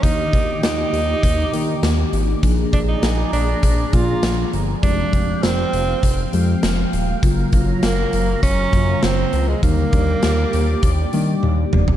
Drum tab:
HH |x-x-x-x-x-x-x-x-|x-x-x-x-x-x-x-x-|x-x-x-x-x-x-x-x-|x-x-x-x-x-x-x-x-|
SD |----o-------o---|----o-------o---|----o-------o---|----o-------o---|
T1 |----------------|----------------|----------------|----------------|
T2 |----------------|----------------|----------------|----------------|
FT |----------------|----------------|----------------|----------------|
BD |o-o-----o-------|o-o-----o-o-----|o-o-----o-------|o-o-----o-o-----|

HH |x-x-x-x-x-x-----|
SD |----o-----------|
T1 |------------o---|
T2 |--------------o-|
FT |---------------o|
BD |o-o-----o-------|